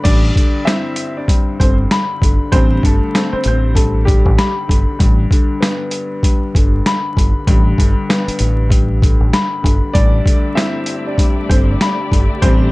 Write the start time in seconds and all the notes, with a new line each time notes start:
0.04 A1 G2 D4 D5, kick, closed hi-hat, crash
0.36 D3, kick, closed hi-hat
0.65 C4 E4 E5, snare, closed hi-hat
0.96 closed hi-hat
1.17 D4 D5
1.28 G2, kick, closed hi-hat
1.59 G1 D3 C4 C5, kick, closed hi-hat
1.91 B5, snare, closed hi-hat
2.22 G1 D3, kick, closed hi-hat
2.52 A1 G2 C4 C5, kick, closed hi-hat
2.83 G1 D3 A3 A4, kick, closed hi-hat
3.14 A3 C4 A4, snare, closed hi-hat
3.33 C4 C5, muted fingered electric bass stroke
3.44 A1 C5, closed hi-hat
3.48 C4
3.74 G2 A3 A4, kick, closed hi-hat
4.05 D3 G3 G4, kick, closed hi-hat
4.26 A1, kick
4.38 B5, snare, closed hi-hat
4.67 G1 D3, kick, closed hi-hat
4.99 A1 G2, kick, closed hi-hat
5.31 D3, kick, closed hi-hat
5.60 B3, snare, closed hi-hat
5.91 closed hi-hat
6.23 G2, kick, closed hi-hat
6.54 G1 D3, kick, closed hi-hat
6.86 B5, snare, closed hi-hat
7.17 G1 D3, kick, closed hi-hat
7.47 A1 G2, kick, closed hi-hat
7.78 G1 D3, kick, closed hi-hat
8.09 B3, snare, closed hi-hat
8.28 muted fingered electric bass stroke, closed hi-hat
8.39 A1, closed hi-hat
8.69 G2, kick, closed hi-hat
9.02 D3, kick, closed hi-hat
9.20 A1
9.33 B5, snare, closed hi-hat
9.62 G1 D3, kick, closed hi-hat
9.93 A1 G2 A3 D4 G4 A4 D5 E5, kick, closed hi-hat
10.26 D3, kick, closed hi-hat
10.55 C4 E4 E5, snare, closed hi-hat
10.86 closed hi-hat
11.07 D4 D5
11.18 G2, kick, closed hi-hat
11.49 G1 D3 C4 C5, kick, closed hi-hat
11.81 B5, snare, closed hi-hat
12.12 G1 D3, kick, closed hi-hat
12.42 A1 G2 C4 C5, kick, closed hi-hat